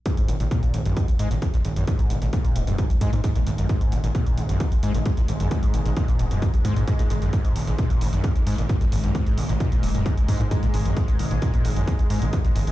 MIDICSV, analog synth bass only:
0, 0, Header, 1, 2, 480
1, 0, Start_track
1, 0, Tempo, 454545
1, 61, Time_signature, 4, 2, 24, 8
1, 13429, End_track
2, 0, Start_track
2, 0, Title_t, "Analog synth bass"
2, 0, Program_c, 0, 38
2, 300, Note_on_c, 0, 32, 94
2, 389, Note_off_c, 0, 32, 0
2, 423, Note_on_c, 0, 32, 79
2, 508, Note_off_c, 0, 32, 0
2, 780, Note_on_c, 0, 32, 91
2, 868, Note_off_c, 0, 32, 0
2, 904, Note_on_c, 0, 32, 81
2, 988, Note_off_c, 0, 32, 0
2, 1261, Note_on_c, 0, 44, 96
2, 1349, Note_off_c, 0, 44, 0
2, 1383, Note_on_c, 0, 32, 81
2, 1467, Note_off_c, 0, 32, 0
2, 1740, Note_on_c, 0, 32, 94
2, 1829, Note_off_c, 0, 32, 0
2, 1863, Note_on_c, 0, 32, 80
2, 1947, Note_off_c, 0, 32, 0
2, 2220, Note_on_c, 0, 32, 95
2, 2308, Note_off_c, 0, 32, 0
2, 2343, Note_on_c, 0, 32, 82
2, 2427, Note_off_c, 0, 32, 0
2, 2700, Note_on_c, 0, 27, 92
2, 2789, Note_off_c, 0, 27, 0
2, 2823, Note_on_c, 0, 27, 83
2, 2907, Note_off_c, 0, 27, 0
2, 3181, Note_on_c, 0, 44, 91
2, 3269, Note_off_c, 0, 44, 0
2, 3303, Note_on_c, 0, 44, 84
2, 3388, Note_off_c, 0, 44, 0
2, 3661, Note_on_c, 0, 32, 90
2, 3749, Note_off_c, 0, 32, 0
2, 3783, Note_on_c, 0, 32, 83
2, 3867, Note_off_c, 0, 32, 0
2, 4141, Note_on_c, 0, 32, 94
2, 4229, Note_off_c, 0, 32, 0
2, 4264, Note_on_c, 0, 32, 83
2, 4348, Note_off_c, 0, 32, 0
2, 4620, Note_on_c, 0, 32, 92
2, 4709, Note_off_c, 0, 32, 0
2, 4744, Note_on_c, 0, 32, 78
2, 4828, Note_off_c, 0, 32, 0
2, 5101, Note_on_c, 0, 44, 96
2, 5189, Note_off_c, 0, 44, 0
2, 5224, Note_on_c, 0, 32, 82
2, 5308, Note_off_c, 0, 32, 0
2, 5581, Note_on_c, 0, 32, 92
2, 5669, Note_off_c, 0, 32, 0
2, 5704, Note_on_c, 0, 32, 80
2, 5788, Note_off_c, 0, 32, 0
2, 6061, Note_on_c, 0, 32, 94
2, 6149, Note_off_c, 0, 32, 0
2, 6185, Note_on_c, 0, 32, 81
2, 6268, Note_off_c, 0, 32, 0
2, 6541, Note_on_c, 0, 27, 88
2, 6629, Note_off_c, 0, 27, 0
2, 6664, Note_on_c, 0, 27, 79
2, 6748, Note_off_c, 0, 27, 0
2, 7021, Note_on_c, 0, 44, 98
2, 7109, Note_off_c, 0, 44, 0
2, 7144, Note_on_c, 0, 44, 82
2, 7228, Note_off_c, 0, 44, 0
2, 7501, Note_on_c, 0, 32, 90
2, 7589, Note_off_c, 0, 32, 0
2, 7625, Note_on_c, 0, 32, 78
2, 7708, Note_off_c, 0, 32, 0
2, 7981, Note_on_c, 0, 32, 94
2, 8069, Note_off_c, 0, 32, 0
2, 8104, Note_on_c, 0, 32, 83
2, 8188, Note_off_c, 0, 32, 0
2, 8462, Note_on_c, 0, 32, 93
2, 8549, Note_off_c, 0, 32, 0
2, 8585, Note_on_c, 0, 32, 80
2, 8668, Note_off_c, 0, 32, 0
2, 8942, Note_on_c, 0, 44, 98
2, 9030, Note_off_c, 0, 44, 0
2, 9065, Note_on_c, 0, 32, 83
2, 9148, Note_off_c, 0, 32, 0
2, 9422, Note_on_c, 0, 32, 91
2, 9510, Note_off_c, 0, 32, 0
2, 9545, Note_on_c, 0, 32, 82
2, 9628, Note_off_c, 0, 32, 0
2, 9902, Note_on_c, 0, 32, 92
2, 9989, Note_off_c, 0, 32, 0
2, 10025, Note_on_c, 0, 32, 81
2, 10108, Note_off_c, 0, 32, 0
2, 10382, Note_on_c, 0, 27, 93
2, 10470, Note_off_c, 0, 27, 0
2, 10504, Note_on_c, 0, 27, 79
2, 10588, Note_off_c, 0, 27, 0
2, 10861, Note_on_c, 0, 44, 92
2, 10949, Note_off_c, 0, 44, 0
2, 10984, Note_on_c, 0, 44, 82
2, 11068, Note_off_c, 0, 44, 0
2, 11342, Note_on_c, 0, 32, 90
2, 11430, Note_off_c, 0, 32, 0
2, 11464, Note_on_c, 0, 32, 80
2, 11548, Note_off_c, 0, 32, 0
2, 11822, Note_on_c, 0, 32, 93
2, 11909, Note_off_c, 0, 32, 0
2, 11944, Note_on_c, 0, 32, 82
2, 12028, Note_off_c, 0, 32, 0
2, 12301, Note_on_c, 0, 32, 91
2, 12389, Note_off_c, 0, 32, 0
2, 12424, Note_on_c, 0, 32, 82
2, 12508, Note_off_c, 0, 32, 0
2, 12781, Note_on_c, 0, 44, 97
2, 12869, Note_off_c, 0, 44, 0
2, 12905, Note_on_c, 0, 32, 80
2, 12988, Note_off_c, 0, 32, 0
2, 13262, Note_on_c, 0, 32, 94
2, 13350, Note_off_c, 0, 32, 0
2, 13384, Note_on_c, 0, 32, 84
2, 13429, Note_off_c, 0, 32, 0
2, 13429, End_track
0, 0, End_of_file